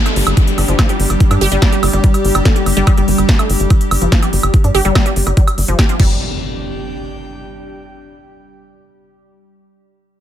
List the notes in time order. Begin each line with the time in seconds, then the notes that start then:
Already playing: G3 D4 G4, downlifter
0.06 A3 G5, closed hi-hat, high woodblock
0.16 G1, open hi-hat
0.27 G1, closed hi-hat, high woodblock
0.37 kick, closed hi-hat
0.48 closed hi-hat
0.58 G1, open hi-hat, high woodblock
0.68 G1 F3, closed hi-hat
0.79 F3, kick, snare, closed hi-hat, high woodblock
0.89 G4, closed hi-hat
1.00 G1, open hi-hat
1.10 G1, closed hi-hat, high woodblock
1.20 kick, closed hi-hat
1.31 G2 D4, closed hi-hat, high woodblock
1.41 G1 G4, open hi-hat
1.52 G1 G3, closed hi-hat
1.62 G3, kick, snare, closed hi-hat, high woodblock
1.72 G4, closed hi-hat
1.83 G1, open hi-hat, high woodblock
1.93 G1 G3, closed hi-hat
2.04 G3, kick, closed hi-hat
2.14 closed hi-hat, high woodblock
2.25 G1, open hi-hat
2.35 G1 G3, closed hi-hat, high woodblock
2.45 A4, kick, snare, closed hi-hat
2.56 G4, closed hi-hat
2.66 G1, open hi-hat, high woodblock
2.77 G1 G3, closed hi-hat
2.87 G3, kick, closed hi-hat, high woodblock
2.98 G1 G3, closed hi-hat
3.08 G1, open hi-hat
3.18 G1, closed hi-hat, high woodblock
3.29 kick, snare, closed hi-hat
3.39 A3, closed hi-hat, high woodblock
3.50 G1, open hi-hat
3.60 G1, closed hi-hat
3.70 kick, closed hi-hat, high woodblock
3.81 closed hi-hat
3.91 G1, open hi-hat, high woodblock
4.02 G1 F3, closed hi-hat
4.12 F3, kick, snare, closed hi-hat
4.22 G4, closed hi-hat, high woodblock
4.33 G1, open hi-hat
4.43 G1, closed hi-hat, high woodblock
4.54 kick, closed hi-hat
4.64 G2 D4, closed hi-hat
4.75 G1 G4, open hi-hat, high woodblock
4.85 G1 G3, closed hi-hat
4.95 G3, kick, snare, closed hi-hat, high woodblock
5.06 G4, closed hi-hat
5.16 G1, open hi-hat
5.27 G1 G3, closed hi-hat, high woodblock
5.37 G3, kick, closed hi-hat
5.47 closed hi-hat, high woodblock
5.58 G1, open hi-hat
5.68 G1 F3, closed hi-hat
5.79 G4, kick, snare, closed hi-hat, high woodblock
5.89 F3, closed hi-hat
6.00 G1 G3 D4, kick, crash, impact
6.06 G4
6.33 G5